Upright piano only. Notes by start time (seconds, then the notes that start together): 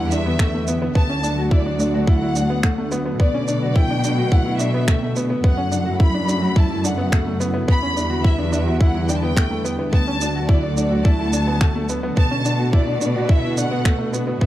0.12 D4
0.26 B3
0.40 A3
0.54 A3
0.68 B3
0.82 B3
0.95 B3
1.09 C#4
1.23 D4
1.38 F#4
1.52 E4
1.66 D4
1.80 D4
1.94 F#4
2.08 E4
2.22 E4
2.36 D4
2.50 B3
2.63 A3
2.78 A3
2.92 B3
3.06 B3
3.20 B3
3.34 C#4
3.48 D4
3.62 F#4
3.76 E4
3.90 D4
4.04 D4
4.18 F#4
4.32 E4
4.46 E4
4.60 D4
4.74 B3
4.88 A3
5.03 A3
5.17 B3
5.30 B3
5.44 B3
5.57 C#4
5.72 D4
5.86 F#4
6.00 E4
6.14 D4
6.28 D4
6.42 F#4
6.57 E4
6.70 E4
6.84 D4
6.98 B3
7.12 A3
7.26 A3
7.40 B3
7.54 B3
7.68 B3
7.82 C#4
7.96 D4
8.10 F#4
8.24 E4
8.38 D4
8.52 D4
8.66 F#4
8.81 E4
8.95 E4
9.09 D4
9.23 B3
9.37 A3
9.51 A3
9.65 B3
9.79 B3
9.93 B3
10.07 C#4
10.22 D4
10.35 F#4
10.49 E4
10.63 D4
10.77 D4
10.91 F#4
11.05 E4
11.19 E4
11.33 D4
11.47 B3
11.61 A3
11.75 A3
11.89 B3
12.03 B3
12.17 B3
12.31 C#4
12.45 D4
12.59 F#4
12.73 E4
12.88 D4
13.01 D4
13.16 F#4
13.30 E4
13.44 E4
13.58 D4
13.71 B3
13.85 A3
13.98 A3
14.13 B3
14.27 B3
14.41 B3